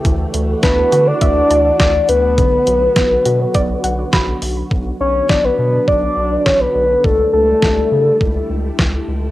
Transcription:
Already playing: string machine A3
0.05 analog synth bass D2, string machine E3 D4 F#4, synth pluck E3, kick, closed hi-hat
0.34 analog synth bass D2, synth pluck A3, closed hi-hat
0.63 analog synth bass D2, synth pluck D4, soft synth lead B4, kick, snare, closed hi-hat
0.92 analog synth bass D3, synth pluck F#4, closed hi-hat
1.07 soft synth lead D5
1.21 analog synth bass D2, synth pluck E5, kick, closed hi-hat
1.51 analog synth bass D2, synth pluck A5, closed hi-hat
1.80 analog synth bass D2, soft synth lead D5, synth pluck D6, kick, snare, closed hi-hat
2.09 analog synth bass D2, soft synth lead B4, closed hi-hat
2.38 analog synth bass B1, string machine D3 F#3 B3, synth pluck D3, kick, closed hi-hat
2.67 analog synth bass B1, synth pluck F#3, closed hi-hat
2.96 analog synth bass B1, synth pluck B3, kick, snare, closed hi-hat
3.25 analog synth bass B2, synth pluck F#4, closed hi-hat
3.54 analog synth bass B1, synth pluck D5, kick, closed hi-hat
3.84 analog synth bass B1, synth pluck F#5, closed hi-hat
4.13 analog synth bass B1, synth pluck B5, kick, snare, closed hi-hat
4.42 analog synth bass B1, open hi-hat
4.71 analog synth bass B1, string machine D3 F#3 B3 D4, kick
5.01 analog synth bass B1, soft synth lead C#5
5.29 analog synth bass B1, soft synth lead D5, kick, snare
5.44 soft synth lead B4
5.59 analog synth bass B2, soft synth lead B4
5.88 analog synth bass B1, soft synth lead D5, kick
6.17 analog synth bass B1
6.46 analog synth bass B1, soft synth lead C#5, kick, snare
6.60 soft synth lead B4
6.75 analog synth bass B1, soft synth lead B4
7.04 analog synth bass C#2, string machine G3 A3 E4, soft synth lead A4, kick
7.33 analog synth bass C#2, soft synth lead A4
7.62 analog synth bass C#2, kick, snare
7.92 analog synth bass C#3
8.21 analog synth bass C#2, kick
8.50 analog synth bass C#2
8.79 analog synth bass C#2, kick, snare
9.08 analog synth bass C#2

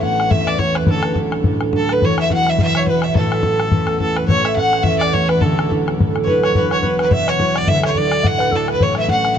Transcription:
Already playing: harp A1 A2 E4
0.02 harp A3 B3 C#4, fiddle F#5, flute F#5, bodhran
0.20 bodhran
0.31 harp E2, fiddle E5, flute E5, bodhran
0.47 fiddle D5, flute D5, bodhran
0.57 harp A3, fiddle C#5, flute C#5 D5, bodhran
0.61 harp B3 C#4
0.75 fiddle B4, flute B4, bodhran
0.81 bodhran
0.87 harp D1 D2, fiddle A4, bodhran
0.91 flute A4
1.03 flute B4, bodhran
1.16 harp F#3 D4 E4, bodhran
1.32 bodhran
1.44 harp A2, bodhran
1.61 bodhran
1.73 harp F#3 D4 E4, flute A4, fiddle A4, bodhran
1.89 flute B4, fiddle B4, bodhran
2.02 harp E1 E2, flute C#5, fiddle C#5, bodhran
2.18 flute E5, fiddle E5, bodhran
2.30 harp F#3 B3 E4, flute F#5, fiddle F#5, bodhran
2.47 flute E5, fiddle E5, bodhran
2.59 harp B2, flute E5, fiddle E5, bodhran
2.75 fiddle C#5, bodhran
2.79 flute C#5
2.87 harp F#3 B3 E4, fiddle B4, flute B4, bodhran
3.02 fiddle E5, flute E5, bodhran
3.09 bodhran
3.15 harp A1 A2, fiddle A4, flute A4, bodhran
3.32 bodhran
3.43 harp A3 C#4 E4, bodhran
3.60 bodhran
3.72 harp E2, bodhran
3.87 bodhran
4.00 harp A3 C#4 E4, fiddle A4, flute A4, bodhran
4.17 fiddle B4, flute B4, bodhran
4.22 bodhran
4.28 harp A1 A2, fiddle C#5, flute C#5, bodhran
4.45 fiddle E5, flute E5, bodhran
4.56 harp A3 B3 C#4, fiddle F#5, flute F#5, bodhran
4.73 bodhran
4.83 harp E2, fiddle E5, bodhran
4.88 flute E5
4.99 fiddle D5, flute D5, bodhran
5.13 harp A3 B3 C#4, fiddle C#5, flute C#5, bodhran
5.28 fiddle B4, flute B4, bodhran
5.36 bodhran
5.41 harp D1 D2, fiddle A4, flute A4, bodhran
5.59 bodhran
5.69 harp F#3 D4 E4, bodhran
5.88 bodhran
5.98 harp A2, bodhran
6.16 bodhran
6.24 harp F#3, flute B4, fiddle B4 C#5, bodhran
6.28 harp D4 E4
6.43 fiddle C#5, bodhran
6.49 bodhran
6.55 harp E1 E2, flute B4, fiddle B4, bodhran
6.71 fiddle C#5, bodhran
6.81 harp F#3 B3, flute B4, bodhran
6.85 harp E4, fiddle B4
6.99 flute B4, fiddle B4, bodhran
7.11 harp B2, fiddle E5, flute E5, bodhran
7.27 flute C#5, fiddle C#5, bodhran
7.40 harp F#3 B3 E4, bodhran
7.54 flute D5, fiddle D5, bodhran
7.62 bodhran
7.67 harp D1 D2, flute E5, fiddle E5, bodhran
7.83 fiddle C#5, bodhran
7.95 harp F#3 D4 E4, flute D5, fiddle D5, bodhran
8.12 bodhran
8.24 harp A2, flute F#5, fiddle F#5, bodhran
8.39 flute B4, bodhran
8.51 harp F#3 D4, flute A4, bodhran
8.55 harp E4, fiddle A4
8.68 flute B4, fiddle B4, bodhran
8.75 bodhran
8.80 harp A1 A2, flute C#5, fiddle C#5, bodhran
8.95 flute E5, bodhran
8.99 fiddle E5
9.06 harp A3 B3, flute F#5, bodhran
9.11 harp C#4, fiddle F#5
9.25 bodhran

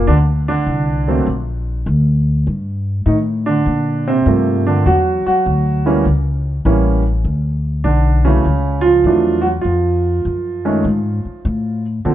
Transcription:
0.07 upright bass D2, grand piano D3 D4
0.48 grand piano D3 D4
0.67 upright bass C2
1.08 grand piano F#3 A3 A#3 C4
1.26 upright bass A#1
1.86 upright bass D2
2.47 upright bass G2
3.06 upright bass A2, grand piano D#3 D#4
3.46 grand piano D3 D4
3.66 upright bass A#2
4.08 grand piano C3 C4
4.26 upright bass G2, grand piano F3 A3 A#3 C4
4.67 grand piano D3 D4
4.85 upright bass E2, grand piano F#3 F#4
5.26 grand piano F#3 F#4, muted upright bass stroke
5.46 upright bass D2
5.86 grand piano E3 G3 A#3 C#4
6.05 upright bass C#2
6.65 upright bass A1, grand piano E3 G3 A#3 C#4
7.24 upright bass D2
7.84 upright bass B1, grand piano D3 D4
8.25 grand piano C#3 E3 F#3 A3 C#4
8.45 upright bass C#2
8.81 grand piano F4
8.86 grand piano F3
9.04 upright bass E2, grand piano E3 F#3 A3 D4
9.42 grand piano F#4
9.46 grand piano F#3
9.61 upright bass F2, grand piano F4
9.66 grand piano F3
10.25 upright bass F#2
10.65 grand piano D#3 G#3 A3 C#4
10.84 upright bass G#2
11.25 muted upright bass stroke
11.45 upright bass A2
12.05 upright bass A#2, grand piano D3 F3 C4 A4

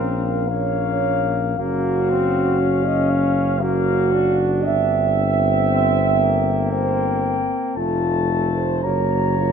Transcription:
Already playing: tuba A#1, trombone C4, euphonium C#4, french horn section A#4, flugelhorn F5
0.49 trombone A#3, euphonium C#4, french horn section C#5, flugelhorn F5
1.58 tuba F#1, trombone A#3, euphonium C#4, french horn section F#4, flugelhorn F5
2.10 trombone C4
2.60 trombone C#4
2.85 french horn section D#5
3.10 french horn section F5
3.60 trombone A#3, euphonium C#4, french horn section F#4, flugelhorn F5
4.12 trombone D4
4.63 tuba G1, euphonium C4, french horn section E5, flugelhorn G5
5.68 trombone C4
6.19 trombone A#3
6.71 euphonium C4, french horn section C5, flugelhorn G5
7.76 tuba F1, trombone A3, french horn section F4, euphonium F4, flugelhorn A5
8.30 french horn section A4
8.57 french horn section C5
8.83 tuba F#1, trombone A#3, euphonium F#4, french horn section C#5, flugelhorn A#5
9.38 trombone A#3, euphonium F4

